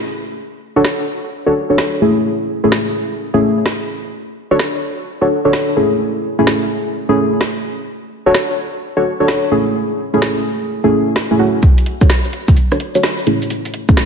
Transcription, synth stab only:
Already playing: A3 C#4 E4 G#4
0.76 D4 F#4 A4 C#5
1.46 D4 F#4 A4 C#5
1.70 D4 F#4 A4 C#5
2.02 A3 C#4 E4 G#4
2.64 A3 C#4 E4 G#4
3.34 A3 C#4 E4 G#4
4.51 D4 F#4 A4 C#5
5.21 D4 F#4 A4 C#5
5.45 D4 F#4 A4 C#5
5.77 A3 C#4 E4 G#4
6.39 A3 C#4 E4 G#4
7.09 A3 C#4 E4 G#4
8.26 D4 F#4 A4 C#5
8.97 D4 F#4 A4 C#5
9.20 D4 F#4 A4 C#5
9.52 A3 C#4 E4 G#4
10.14 A3 C#4 E4 G#4
10.84 A3 C#4 E4 G#4
11.31 A3 C#4 E4 G#4
11.39 A3 C#4 E4 F#4
12.01 D4 F#4 A4 C#5
12.72 D4 F#4 A4 C#5
12.95 D4 F#4 A4 C#5
13.27 A3 C#4 E4 G#4
13.89 A3 C#4 E4 G#4

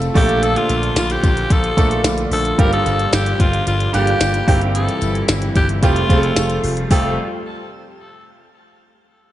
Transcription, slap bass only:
0.15 A#1
0.70 A#1
0.96 A#1
1.24 A#1
1.50 A#1
1.77 A#1
2.04 A#1
2.31 A#1
2.59 G1
2.86 G1
3.13 G1
3.40 G1
3.67 G1
3.94 G1
4.21 G1
4.48 G1
5.02 G1
5.29 G1
5.56 G1
5.83 F1
6.10 F1
6.37 F1
6.64 F1
6.91 F1

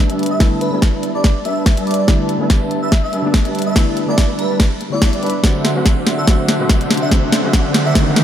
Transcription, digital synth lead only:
0.31 E5
0.61 B4
1.15 D5
1.24 D5
1.45 E5
1.87 D5
1.99 D5
2.82 E5
3.03 E5
3.66 E5
4.08 D5
4.39 B4
4.92 D5
6.18 E5
7.02 E5
7.86 E5

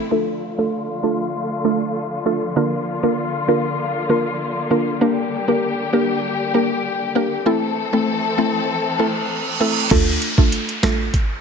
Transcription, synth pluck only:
0.11 A3 D4 F4 A4
0.58 A3 D4 F4 A4
1.03 A3 D4 F4 A4
1.64 A3 D4 F4 A4
2.26 A3 D4 F4 A4
2.56 D3 A#3 D4 F4 A#4
3.03 D3 A#3 D4 F4 A#4
3.48 D3 A#3 D4 F4 A#4
4.09 D3 A#3 D4 F4 A#4
4.70 D3 A#3 D4 F4 A#4
5.01 A#3 D4 G4 A#4
5.48 A#3 D4 G4 A#4
5.93 A#3 D4 G4 A#4
6.54 A#3 D4 G4 A#4
7.15 A#3 D4 G4 A#4
7.46 A3 C4 E4 A4
7.93 A3 C4 E4 A4
8.38 A3 C4 E4 A4
8.99 A3 C4 E4 A4
9.60 A3 C4 E4 A4
9.91 A3 D4 F4 A4
10.38 A3 D4 F4 A4
10.83 A3 D4 F4 A4

